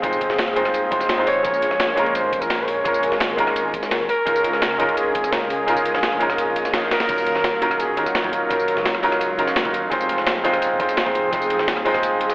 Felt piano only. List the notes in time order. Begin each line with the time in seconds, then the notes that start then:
Already playing: G#3 C4 D#4 F4 C5
0.02 G#3 C4 D#4 F4 C5
0.56 G#3 C4 D#4 F4 C5
0.91 G#3 C4 D#4 F4 C5
1.18 G#3 C4 D#4 F4 C5
1.43 G#3 A#3 C#4 F4 A#4
1.96 G#3 A#3 C#4 F4 A#4
2.84 G#3 A#3 C#4 F4 A#4
3.37 G#3 A#3 C#4 F4 A#4
4.25 G#3 C#4 D#4 F4 A#4
4.78 G#3 C#4 D#4 F4 A#4
5.67 G#3 C#4 D#4 F4 A#4
6.19 G#3 C#4 D#4 F4 A#4
7.07 F#3 C#4 D#4 F4 A#4
7.61 F#3 C#4 D#4 F4 A#4
7.97 F#3 C#4 D#4 F4 A#4
8.23 F#3 C#4 D#4 F4 A#4
8.49 F#3 C#4 D#4 F4 A#4
9.03 F#3 C#4 D#4 F4 A#4
9.38 F#3 C#4 D#4 F4 A#4
9.64 F#3 C#4 D#4 F4 A#4
9.90 G#3 C4 D#4 F4 C5
10.44 G#3 C4 D#4 F4 C5
10.79 G#3 C4 D#4 F4 C5
11.05 G#3 C4 D#4 F4 C5
11.31 G#3 C4 D#4 F4 C5
11.85 G#3 C4 D#4 F4 C5